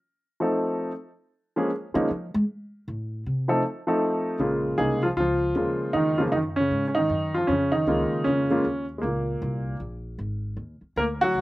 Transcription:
0.40 0.90 F3 medium
0.40 0.90 A3 medium
0.40 0.91 C4 medium
0.40 0.91 D#4 medium
0.40 0.91 A4 medium
1.56 1.69 F3 medium
1.56 1.69 G#3 medium
1.56 1.69 A#3 medium
1.56 1.70 C#4 medium
1.56 1.70 G#4 medium
1.94 2.09 D#3 loud
1.94 2.07 F3 medium
1.94 2.07 G#3 medium
1.94 2.07 A#3 medium
1.94 2.08 C#4 medium
1.94 2.08 D#4 medium
2.11 2.34 F3 medium
2.34 2.43 G#3 loud
2.88 3.23 A2 medium
3.26 3.61 C3 medium
3.48 3.61 F3 medium
3.48 3.61 A3 medium
3.48 3.62 C4 medium
3.48 3.61 D#4 medium
3.48 3.62 A4 medium
3.87 4.37 F3 medium
3.87 4.37 A3 medium
3.87 4.37 C4 medium
3.87 4.37 D#4 medium
3.87 4.38 A4 medium
4.39 4.77 A#1 medium
4.39 4.77 C#3 medium
4.39 4.77 G#3 medium
4.39 4.77 A#3 medium
4.39 4.78 F4 medium
4.78 5.16 C2 medium
4.78 5.00 C#3 medium
4.78 5.00 G#3 medium
4.78 5.01 A#3 medium
4.78 5.01 D#4 medium
4.78 5.01 G#4 medium
5.03 5.10 F3 medium
5.03 5.08 F4 medium
5.17 5.54 C#2 medium
5.17 5.92 F3 medium
5.17 5.55 F4 medium
5.55 5.93 D#2 medium
5.55 6.14 C#3 medium
5.55 6.14 G#3 medium
5.55 6.14 A#3 soft
5.55 6.14 F4 medium
5.93 6.31 F2 medium
5.93 6.18 D#3 medium
5.93 6.19 D#4 medium
6.18 6.31 C#3 medium
6.18 6.26 F3 medium
6.18 6.32 G#3 medium
6.18 6.32 A#3 medium
6.18 6.23 F4 medium
6.32 6.70 F#2 medium
6.32 6.38 D#4 medium
6.36 6.41 D#3 medium
6.56 6.86 C#3 medium
6.56 6.84 C#4 medium
6.71 7.09 G#2 medium
6.88 6.96 C#4 medium
6.95 7.35 D#4 loud
6.99 7.33 D#3 medium
7.10 7.47 F#2 medium
7.34 7.49 F3 medium
7.34 7.48 F4 medium
7.47 7.86 F2 medium
7.47 7.71 C#4 medium
7.51 7.73 C#3 medium
7.72 8.23 D#3 medium
7.72 8.27 D#4 medium
7.87 8.10 C#2 medium
7.87 8.26 C#3 medium
7.87 8.46 G#3 medium
7.87 8.46 A#3 medium
7.87 8.46 F4 medium
8.12 muted upright bass stroke soft
8.24 8.63 F2 medium
8.24 8.49 C#3 medium
8.24 8.84 C#4 medium
8.50 8.63 C#3 medium
8.50 8.63 G#3 medium
8.50 8.63 A#3 medium
8.50 8.64 F4 medium
8.64 9.02 D#2 medium
8.98 9.03 G#3 medium
8.98 9.75 A#3 medium
9.03 9.40 C#2 medium
9.03 9.77 A#2 medium
9.42 9.79 C2 medium
9.80 10.18 A#1 medium
10.19 10.56 G#1 medium
10.57 10.80 D#2 medium
10.81 muted upright bass stroke soft
10.96 11.33 D2 medium
10.96 11.05 A#3 medium
10.96 11.03 A#4 loud
11.21 11.41 F#3 medium
11.21 11.41 F#4 loud
11.35 11.41 C#2 medium

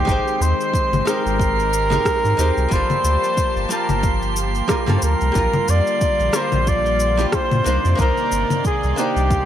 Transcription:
0.00 2.67 D#3 medium
0.00 2.68 G#3 medium
0.00 2.68 C4 medium
0.00 0.44 G4 loud
0.00 2.69 G4 medium
0.00 9.45 C6 medium
0.05 0.21 G#1 loud
0.05 1.02 G#3 medium
0.05 1.03 D#4 medium
0.05 kick loud
0.05 shaker soft
0.09 1.04 G4 medium
0.09 1.05 C5 loud
0.28 shaker soft
0.41 0.54 D#2 loud
0.41 1.07 C5 loud
0.41 shaker medium
0.61 shaker soft
0.74 kick loud
0.74 shaker soft
0.93 1.02 G#1 loud
0.93 low conga medium
0.93 shaker soft
1.05 1.68 G#3 medium
1.05 1.69 D#4 medium
1.05 1.69 G4 medium
1.05 2.74 A#4 loud
1.05 1.70 C5 medium
1.05 cross-stick medium
1.05 shaker medium
1.26 1.99 G#1 medium
1.26 shaker soft
1.39 kick loud
1.39 shaker soft
1.59 shaker soft
1.73 shaker medium
1.90 2.34 G#3 medium
1.90 2.35 D#4 medium
1.90 2.35 G4 medium
1.90 2.36 A#4 medium
1.90 low conga medium
1.90 shaker soft
2.05 kick loud
2.05 cross-stick medium
2.05 shaker soft
2.25 2.34 G#2 medium
2.25 shaker soft
2.37 2.51 D#2 medium
2.37 2.67 G#3 medium
2.37 2.68 D#4 medium
2.37 2.68 G4 medium
2.37 2.69 C5 medium
2.37 shaker medium
2.57 2.67 C2 loud
2.57 shaker soft
2.69 2.84 G1 loud
2.69 5.32 F3 medium
2.69 3.65 G3 medium
2.69 5.32 A#3 medium
2.69 3.67 A#3 medium
2.69 5.32 G4 medium
2.69 5.32 A5 medium
2.69 kick loud
2.69 shaker soft
2.73 3.68 F4 medium
2.73 3.69 A4 loud
2.73 3.71 C5 loud
2.90 low conga medium
2.90 shaker soft
3.04 3.17 D2 loud
3.04 shaker medium
3.24 shaker soft
3.37 kick loud
3.37 shaker soft
3.56 3.66 G1 loud
3.56 shaker soft
3.69 4.32 G3 medium
3.69 4.33 A#3 medium
3.69 4.33 F4 medium
3.69 4.33 A#4 loud
3.69 4.34 A5 medium
3.69 shaker medium
3.89 4.62 G1 medium
3.89 low conga medium
3.89 shaker soft
4.03 kick loud
4.03 shaker soft
4.22 shaker soft
4.36 shaker medium
4.55 shaker soft
4.68 4.83 G3 medium
4.68 4.83 A#3 medium
4.68 4.84 F4 medium
4.68 4.84 A#4 loud
4.68 kick loud
4.68 cross-stick medium
4.68 shaker soft
4.86 4.98 G2 medium
4.86 5.31 G3 medium
4.86 5.31 A#3 medium
4.86 5.32 F4 medium
4.86 5.32 A4 loud
4.86 low conga medium
4.86 shaker soft
4.98 5.05 C5 medium
5.02 5.15 D2 medium
5.02 5.71 A#4 loud
5.02 shaker medium
5.21 5.31 C2 medium
5.21 shaker soft
5.32 5.48 A#1 loud
5.32 7.63 D3 medium
5.32 6.29 G3 medium
5.32 7.63 G3 medium
5.32 9.45 A#3 medium
5.32 6.30 D4 medium
5.32 7.64 F4 medium
5.32 kick loud
5.32 shaker soft
5.36 6.31 F4 medium
5.36 6.32 A#4 loud
5.53 low conga medium
5.53 shaker soft
5.68 5.81 F2 loud
5.68 6.37 D5 loud
5.68 shaker medium
5.87 shaker soft
6.01 kick loud
6.01 shaker soft
6.20 6.30 A#1 loud
6.20 shaker soft
6.32 6.96 G3 medium
6.32 6.96 D4 medium
6.32 6.97 F4 medium
6.32 6.97 A#4 medium
6.32 6.70 C5 loud
6.32 cross-stick medium
6.32 shaker medium
6.52 7.26 A#1 medium
6.52 low conga medium
6.52 shaker soft
6.67 7.28 D5 loud
6.67 kick loud
6.67 shaker soft
6.86 shaker soft
7.00 shaker medium
7.17 7.62 G3 medium
7.17 7.62 D4 medium
7.17 7.63 F4 medium
7.17 7.63 G4 medium
7.17 shaker soft
7.28 7.36 D5 medium
7.32 8.00 C5 loud
7.32 kick loud
7.32 cross-stick medium
7.32 shaker soft
7.51 7.61 A#2 medium
7.51 low conga medium
7.51 shaker soft
7.64 7.79 C2 medium
7.64 9.45 C3 medium
7.64 9.45 D#3 medium
7.64 7.94 A#3 medium
7.64 7.95 D4 medium
7.64 7.96 D#4 medium
7.64 7.96 C5 medium
7.64 9.45 D5 medium
7.64 shaker medium
7.85 7.95 F2 medium
7.85 shaker soft
7.95 8.12 C2 loud
7.95 8.93 A#3 medium
7.95 8.94 D4 medium
7.95 kick loud
7.95 shaker soft
8.00 8.95 D#4 medium
8.00 8.62 A#4 loud
8.00 8.96 C5 loud
8.17 shaker soft
8.32 8.45 G1 loud
8.32 shaker medium
8.50 low conga medium
8.50 shaker soft
8.64 9.00 G#4 loud
8.64 kick loud
8.64 shaker soft
8.83 8.93 C2 loud
8.83 shaker soft
8.96 9.45 A#3 medium
8.96 9.45 D4 medium
8.96 9.45 D#4 medium
8.96 9.45 G4 loud
8.96 9.45 C5 loud
8.96 shaker medium
9.16 9.45 C2 medium
9.16 shaker soft
9.30 kick loud
9.30 shaker soft

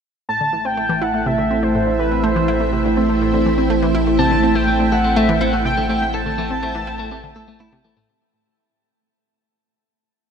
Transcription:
0.29 8.07 A1 medium
0.29 0.40 A2 medium
0.29 8.09 A3 medium
0.29 8.10 E5 medium
0.29 0.67 A5 loud
0.41 0.49 D3 medium
0.53 0.58 E3 medium
0.65 0.77 C4 medium
0.65 1.03 G5 loud
0.75 0.86 A3 medium
0.75 8.09 E4 medium
0.89 1.01 E3 loud
1.02 1.10 E4 medium
1.02 1.28 F#5 medium
1.14 1.22 A3 medium
1.26 1.34 C3 medium
1.26 1.64 E5 loud
1.38 1.43 D3 medium
1.46 8.09 C5 medium
1.46 8.09 G5 medium
1.51 1.62 C4 medium
1.63 1.71 A3 medium
1.63 1.99 C5 medium
1.75 1.86 A2 medium
1.87 1.95 D3 medium
1.99 2.04 E3 medium
1.99 2.22 B4 medium
2.12 2.23 C4 medium
2.24 2.32 A3 loud
2.24 2.69 C5 medium
2.36 2.47 E3 loud
2.48 2.56 E4 loud
2.60 2.69 A3 medium
2.73 2.81 C3 medium
2.85 2.90 D3 medium
2.97 3.08 C4 medium
3.09 3.17 A3 medium
3.21 3.33 A2 medium
3.34 3.42 D3 medium
3.46 3.51 E3 medium
3.58 3.69 C4 medium
3.70 3.78 A3 loud
3.82 3.94 E3 medium
3.95 4.03 E4 loud
4.07 4.15 A3 medium
4.19 4.27 C3 medium
4.19 4.30 C4 medium
4.19 4.57 A5 loud
4.31 4.37 A2 medium
4.31 4.36 D3 medium
4.43 4.55 C4 medium
4.55 4.64 A3 medium
4.55 4.66 A3 medium
4.55 4.94 G5 loud
4.68 4.79 A2 medium
4.68 4.78 A3 medium
4.80 4.88 D3 medium
4.92 4.97 E3 medium
4.92 4.98 A4 medium
4.92 5.18 F#5 medium
5.04 5.15 A3 medium
5.04 5.16 C4 medium
5.16 5.28 A3 loud
5.16 5.25 A3 loud
5.16 5.42 E5 medium
5.29 5.40 E3 loud
5.41 5.52 C4 medium
5.41 5.49 E4 loud
5.41 5.65 F#5 medium
5.53 5.59 A2 medium
5.53 5.61 A3 medium
5.65 5.74 C3 medium
5.65 5.88 G5 loud
5.77 5.82 D3 medium
5.77 5.88 A3 medium
5.89 6.00 A3 medium
5.89 6.01 C4 medium
5.89 6.16 G5 loud
6.02 6.10 A3 medium
6.14 6.25 A2 medium
6.14 6.20 A4 medium
6.14 7.60 A5 loud
6.26 6.34 D3 medium
6.26 6.37 A3 medium
6.38 6.43 E3 medium
6.38 6.50 A3 loud
6.51 6.62 C4 medium
6.63 6.71 A3 loud
6.63 6.74 C4 medium
6.75 6.81 A2 medium
6.75 6.87 E3 loud
6.87 6.95 E4 loud
6.99 7.10 A3 medium
6.99 7.08 A3 medium
7.11 7.20 C3 medium
7.11 7.22 A3 medium
7.24 7.29 D3 medium
7.36 7.41 A3 medium
7.36 7.47 A4 medium
7.48 7.59 A3 medium
7.48 7.56 A3 medium
7.60 7.72 A3 loud
7.60 7.72 E4 medium
7.72 7.81 C3 loud
7.84 7.90 E3 medium
7.84 7.95 A3 medium
7.97 8.08 A2 medium
7.97 8.08 A3 medium

